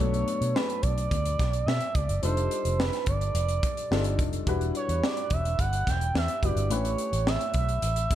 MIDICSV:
0, 0, Header, 1, 5, 480
1, 0, Start_track
1, 0, Key_signature, 2, "minor"
1, 0, Tempo, 559858
1, 1911, Time_signature, 4, 2, 24, 8
1, 6987, End_track
2, 0, Start_track
2, 0, Title_t, "Analog synth lead"
2, 0, Program_c, 0, 81
2, 0, Note_on_c, 0, 73, 92
2, 469, Note_on_c, 0, 71, 84
2, 482, Note_off_c, 0, 73, 0
2, 702, Note_on_c, 0, 74, 102
2, 715, Note_off_c, 0, 71, 0
2, 1422, Note_off_c, 0, 74, 0
2, 1427, Note_on_c, 0, 76, 90
2, 1667, Note_on_c, 0, 74, 77
2, 1680, Note_off_c, 0, 76, 0
2, 1903, Note_off_c, 0, 74, 0
2, 1908, Note_on_c, 0, 72, 87
2, 2390, Note_on_c, 0, 71, 83
2, 2403, Note_off_c, 0, 72, 0
2, 2634, Note_on_c, 0, 74, 93
2, 2647, Note_off_c, 0, 71, 0
2, 3593, Note_off_c, 0, 74, 0
2, 4084, Note_on_c, 0, 73, 79
2, 4320, Note_on_c, 0, 74, 82
2, 4333, Note_off_c, 0, 73, 0
2, 4568, Note_on_c, 0, 76, 89
2, 4581, Note_off_c, 0, 74, 0
2, 4797, Note_on_c, 0, 78, 97
2, 4810, Note_off_c, 0, 76, 0
2, 5049, Note_on_c, 0, 79, 96
2, 5062, Note_off_c, 0, 78, 0
2, 5280, Note_off_c, 0, 79, 0
2, 5288, Note_on_c, 0, 76, 88
2, 5528, Note_on_c, 0, 74, 74
2, 5541, Note_off_c, 0, 76, 0
2, 5763, Note_on_c, 0, 73, 84
2, 5776, Note_off_c, 0, 74, 0
2, 6244, Note_on_c, 0, 76, 84
2, 6257, Note_off_c, 0, 73, 0
2, 6477, Note_off_c, 0, 76, 0
2, 6485, Note_on_c, 0, 76, 94
2, 6987, Note_off_c, 0, 76, 0
2, 6987, End_track
3, 0, Start_track
3, 0, Title_t, "Grand piano"
3, 0, Program_c, 1, 0
3, 0, Control_c, 1, 64, 127
3, 0, Note_on_c, 1, 54, 53
3, 0, Note_on_c, 1, 57, 55
3, 0, Note_on_c, 1, 59, 55
3, 3, Note_on_c, 1, 62, 56
3, 4, Control_c, 1, 64, 0
3, 5, Note_on_c, 1, 69, 64
3, 153, Control_c, 1, 64, 127
3, 1874, Note_off_c, 1, 54, 0
3, 1877, Note_off_c, 1, 59, 0
3, 1879, Note_off_c, 1, 57, 0
3, 1883, Note_off_c, 1, 62, 0
3, 1884, Note_off_c, 1, 69, 0
3, 1905, Note_on_c, 1, 55, 59
3, 1911, Note_on_c, 1, 62, 54
3, 1916, Note_on_c, 1, 63, 52
3, 1921, Control_c, 1, 64, 0
3, 1921, Note_on_c, 1, 65, 52
3, 1925, Note_on_c, 1, 69, 67
3, 2084, Control_c, 1, 64, 127
3, 3319, Note_off_c, 1, 55, 0
3, 3322, Note_off_c, 1, 62, 0
3, 3325, Note_off_c, 1, 63, 0
3, 3328, Note_off_c, 1, 65, 0
3, 3330, Note_off_c, 1, 69, 0
3, 3350, Note_on_c, 1, 55, 52
3, 3354, Note_on_c, 1, 62, 47
3, 3358, Note_on_c, 1, 63, 55
3, 3359, Note_on_c, 1, 65, 51
3, 3362, Note_on_c, 1, 69, 59
3, 3814, Note_off_c, 1, 55, 0
3, 3818, Note_off_c, 1, 62, 0
3, 3827, Note_on_c, 1, 55, 70
3, 3831, Note_on_c, 1, 62, 61
3, 3835, Note_off_c, 1, 63, 0
3, 3835, Note_off_c, 1, 65, 0
3, 3837, Note_off_c, 1, 69, 0
3, 3838, Note_on_c, 1, 64, 60
3, 3840, Note_on_c, 1, 66, 63
3, 3843, Control_c, 1, 64, 0
3, 3847, Note_on_c, 1, 71, 77
3, 4014, Control_c, 1, 64, 127
3, 5475, Note_off_c, 1, 55, 0
3, 5477, Note_off_c, 1, 62, 0
3, 5481, Note_off_c, 1, 64, 0
3, 5482, Note_off_c, 1, 66, 0
3, 5486, Note_off_c, 1, 71, 0
3, 5507, Note_on_c, 1, 55, 43
3, 5509, Note_on_c, 1, 62, 44
3, 5512, Note_on_c, 1, 64, 45
3, 5514, Note_on_c, 1, 66, 42
3, 5517, Note_on_c, 1, 71, 53
3, 5739, Note_off_c, 1, 64, 0
3, 5741, Note_on_c, 1, 57, 52
3, 5748, Note_on_c, 1, 61, 51
3, 5749, Note_off_c, 1, 55, 0
3, 5750, Note_off_c, 1, 62, 0
3, 5750, Note_off_c, 1, 71, 0
3, 5752, Note_on_c, 1, 64, 53
3, 5753, Note_off_c, 1, 66, 0
3, 5758, Note_on_c, 1, 67, 49
3, 5761, Control_c, 1, 64, 0
3, 5763, Note_on_c, 1, 71, 68
3, 5901, Control_c, 1, 64, 127
3, 6987, Note_off_c, 1, 57, 0
3, 6987, Note_off_c, 1, 61, 0
3, 6987, Note_off_c, 1, 64, 0
3, 6987, Note_off_c, 1, 67, 0
3, 6987, Note_off_c, 1, 71, 0
3, 6987, End_track
4, 0, Start_track
4, 0, Title_t, "Fingered electric bass"
4, 0, Program_c, 2, 33
4, 0, Note_on_c, 2, 35, 101
4, 196, Note_off_c, 2, 35, 0
4, 352, Note_on_c, 2, 47, 82
4, 453, Note_off_c, 2, 47, 0
4, 716, Note_on_c, 2, 35, 85
4, 917, Note_off_c, 2, 35, 0
4, 953, Note_on_c, 2, 38, 88
4, 1155, Note_off_c, 2, 38, 0
4, 1195, Note_on_c, 2, 35, 68
4, 1396, Note_off_c, 2, 35, 0
4, 1429, Note_on_c, 2, 47, 88
4, 1531, Note_off_c, 2, 47, 0
4, 1673, Note_on_c, 2, 37, 72
4, 1774, Note_off_c, 2, 37, 0
4, 1789, Note_on_c, 2, 30, 79
4, 1892, Note_off_c, 2, 30, 0
4, 1913, Note_on_c, 2, 29, 98
4, 2115, Note_off_c, 2, 29, 0
4, 2272, Note_on_c, 2, 29, 85
4, 2475, Note_off_c, 2, 29, 0
4, 2632, Note_on_c, 2, 31, 83
4, 2835, Note_off_c, 2, 31, 0
4, 2868, Note_on_c, 2, 29, 101
4, 3072, Note_off_c, 2, 29, 0
4, 3352, Note_on_c, 2, 31, 71
4, 3592, Note_off_c, 2, 31, 0
4, 3592, Note_on_c, 2, 29, 76
4, 3795, Note_off_c, 2, 29, 0
4, 3831, Note_on_c, 2, 28, 98
4, 4034, Note_off_c, 2, 28, 0
4, 4189, Note_on_c, 2, 40, 81
4, 4291, Note_off_c, 2, 40, 0
4, 4551, Note_on_c, 2, 28, 84
4, 4754, Note_off_c, 2, 28, 0
4, 4792, Note_on_c, 2, 31, 87
4, 4995, Note_off_c, 2, 31, 0
4, 5032, Note_on_c, 2, 28, 68
4, 5235, Note_off_c, 2, 28, 0
4, 5269, Note_on_c, 2, 40, 86
4, 5371, Note_off_c, 2, 40, 0
4, 5513, Note_on_c, 2, 30, 73
4, 5613, Note_off_c, 2, 30, 0
4, 5624, Note_on_c, 2, 31, 75
4, 5751, Note_off_c, 2, 31, 0
4, 5751, Note_on_c, 2, 33, 97
4, 5954, Note_off_c, 2, 33, 0
4, 6110, Note_on_c, 2, 33, 83
4, 6313, Note_off_c, 2, 33, 0
4, 6467, Note_on_c, 2, 35, 84
4, 6671, Note_off_c, 2, 35, 0
4, 6708, Note_on_c, 2, 33, 92
4, 6912, Note_off_c, 2, 33, 0
4, 6987, End_track
5, 0, Start_track
5, 0, Title_t, "Drums"
5, 0, Note_on_c, 9, 42, 80
5, 83, Note_off_c, 9, 42, 0
5, 118, Note_on_c, 9, 42, 45
5, 204, Note_off_c, 9, 42, 0
5, 238, Note_on_c, 9, 42, 57
5, 323, Note_off_c, 9, 42, 0
5, 358, Note_on_c, 9, 42, 54
5, 444, Note_off_c, 9, 42, 0
5, 481, Note_on_c, 9, 38, 110
5, 566, Note_off_c, 9, 38, 0
5, 598, Note_on_c, 9, 42, 43
5, 683, Note_off_c, 9, 42, 0
5, 712, Note_on_c, 9, 42, 65
5, 714, Note_on_c, 9, 36, 78
5, 797, Note_off_c, 9, 42, 0
5, 800, Note_off_c, 9, 36, 0
5, 837, Note_on_c, 9, 42, 46
5, 923, Note_off_c, 9, 42, 0
5, 954, Note_on_c, 9, 36, 80
5, 956, Note_on_c, 9, 42, 77
5, 1040, Note_off_c, 9, 36, 0
5, 1042, Note_off_c, 9, 42, 0
5, 1076, Note_on_c, 9, 42, 51
5, 1162, Note_off_c, 9, 42, 0
5, 1195, Note_on_c, 9, 36, 80
5, 1197, Note_on_c, 9, 42, 71
5, 1202, Note_on_c, 9, 38, 32
5, 1281, Note_off_c, 9, 36, 0
5, 1283, Note_off_c, 9, 42, 0
5, 1288, Note_off_c, 9, 38, 0
5, 1315, Note_on_c, 9, 42, 44
5, 1401, Note_off_c, 9, 42, 0
5, 1443, Note_on_c, 9, 38, 98
5, 1529, Note_off_c, 9, 38, 0
5, 1548, Note_on_c, 9, 42, 47
5, 1633, Note_off_c, 9, 42, 0
5, 1671, Note_on_c, 9, 42, 62
5, 1672, Note_on_c, 9, 36, 87
5, 1757, Note_off_c, 9, 42, 0
5, 1758, Note_off_c, 9, 36, 0
5, 1793, Note_on_c, 9, 42, 46
5, 1879, Note_off_c, 9, 42, 0
5, 1910, Note_on_c, 9, 42, 83
5, 1996, Note_off_c, 9, 42, 0
5, 2033, Note_on_c, 9, 42, 43
5, 2119, Note_off_c, 9, 42, 0
5, 2153, Note_on_c, 9, 42, 51
5, 2239, Note_off_c, 9, 42, 0
5, 2273, Note_on_c, 9, 42, 54
5, 2359, Note_off_c, 9, 42, 0
5, 2399, Note_on_c, 9, 38, 101
5, 2484, Note_off_c, 9, 38, 0
5, 2513, Note_on_c, 9, 42, 51
5, 2520, Note_on_c, 9, 38, 34
5, 2599, Note_off_c, 9, 42, 0
5, 2606, Note_off_c, 9, 38, 0
5, 2626, Note_on_c, 9, 42, 65
5, 2631, Note_on_c, 9, 36, 75
5, 2712, Note_off_c, 9, 42, 0
5, 2717, Note_off_c, 9, 36, 0
5, 2755, Note_on_c, 9, 42, 41
5, 2840, Note_off_c, 9, 42, 0
5, 2871, Note_on_c, 9, 42, 86
5, 2957, Note_off_c, 9, 42, 0
5, 2988, Note_on_c, 9, 42, 47
5, 3074, Note_off_c, 9, 42, 0
5, 3112, Note_on_c, 9, 42, 66
5, 3113, Note_on_c, 9, 36, 85
5, 3198, Note_off_c, 9, 42, 0
5, 3199, Note_off_c, 9, 36, 0
5, 3234, Note_on_c, 9, 42, 42
5, 3320, Note_off_c, 9, 42, 0
5, 3359, Note_on_c, 9, 38, 93
5, 3444, Note_off_c, 9, 38, 0
5, 3466, Note_on_c, 9, 42, 53
5, 3552, Note_off_c, 9, 42, 0
5, 3591, Note_on_c, 9, 36, 84
5, 3591, Note_on_c, 9, 42, 64
5, 3677, Note_off_c, 9, 36, 0
5, 3677, Note_off_c, 9, 42, 0
5, 3711, Note_on_c, 9, 42, 44
5, 3796, Note_off_c, 9, 42, 0
5, 3831, Note_on_c, 9, 36, 105
5, 3832, Note_on_c, 9, 42, 92
5, 3917, Note_off_c, 9, 36, 0
5, 3918, Note_off_c, 9, 42, 0
5, 3953, Note_on_c, 9, 42, 42
5, 4039, Note_off_c, 9, 42, 0
5, 4072, Note_on_c, 9, 42, 55
5, 4158, Note_off_c, 9, 42, 0
5, 4194, Note_on_c, 9, 42, 51
5, 4280, Note_off_c, 9, 42, 0
5, 4317, Note_on_c, 9, 38, 111
5, 4403, Note_off_c, 9, 38, 0
5, 4432, Note_on_c, 9, 42, 47
5, 4518, Note_off_c, 9, 42, 0
5, 4546, Note_on_c, 9, 42, 68
5, 4551, Note_on_c, 9, 36, 82
5, 4632, Note_off_c, 9, 42, 0
5, 4636, Note_off_c, 9, 36, 0
5, 4676, Note_on_c, 9, 42, 44
5, 4761, Note_off_c, 9, 42, 0
5, 4791, Note_on_c, 9, 36, 77
5, 4792, Note_on_c, 9, 42, 82
5, 4877, Note_off_c, 9, 36, 0
5, 4877, Note_off_c, 9, 42, 0
5, 4911, Note_on_c, 9, 42, 56
5, 4997, Note_off_c, 9, 42, 0
5, 5033, Note_on_c, 9, 36, 74
5, 5037, Note_on_c, 9, 42, 73
5, 5042, Note_on_c, 9, 38, 30
5, 5119, Note_off_c, 9, 36, 0
5, 5123, Note_off_c, 9, 42, 0
5, 5128, Note_off_c, 9, 38, 0
5, 5155, Note_on_c, 9, 42, 42
5, 5241, Note_off_c, 9, 42, 0
5, 5277, Note_on_c, 9, 38, 96
5, 5362, Note_off_c, 9, 38, 0
5, 5387, Note_on_c, 9, 42, 53
5, 5473, Note_off_c, 9, 42, 0
5, 5510, Note_on_c, 9, 36, 76
5, 5512, Note_on_c, 9, 42, 63
5, 5596, Note_off_c, 9, 36, 0
5, 5598, Note_off_c, 9, 42, 0
5, 5631, Note_on_c, 9, 42, 45
5, 5716, Note_off_c, 9, 42, 0
5, 5749, Note_on_c, 9, 42, 88
5, 5835, Note_off_c, 9, 42, 0
5, 5871, Note_on_c, 9, 42, 47
5, 5957, Note_off_c, 9, 42, 0
5, 5988, Note_on_c, 9, 42, 56
5, 6073, Note_off_c, 9, 42, 0
5, 6113, Note_on_c, 9, 42, 52
5, 6199, Note_off_c, 9, 42, 0
5, 6233, Note_on_c, 9, 38, 103
5, 6318, Note_off_c, 9, 38, 0
5, 6351, Note_on_c, 9, 42, 48
5, 6437, Note_off_c, 9, 42, 0
5, 6461, Note_on_c, 9, 42, 64
5, 6468, Note_on_c, 9, 36, 72
5, 6547, Note_off_c, 9, 42, 0
5, 6554, Note_off_c, 9, 36, 0
5, 6590, Note_on_c, 9, 42, 40
5, 6676, Note_off_c, 9, 42, 0
5, 6708, Note_on_c, 9, 42, 80
5, 6793, Note_off_c, 9, 42, 0
5, 6826, Note_on_c, 9, 42, 53
5, 6912, Note_off_c, 9, 42, 0
5, 6950, Note_on_c, 9, 36, 85
5, 6952, Note_on_c, 9, 42, 69
5, 6957, Note_on_c, 9, 38, 34
5, 6987, Note_off_c, 9, 36, 0
5, 6987, Note_off_c, 9, 38, 0
5, 6987, Note_off_c, 9, 42, 0
5, 6987, End_track
0, 0, End_of_file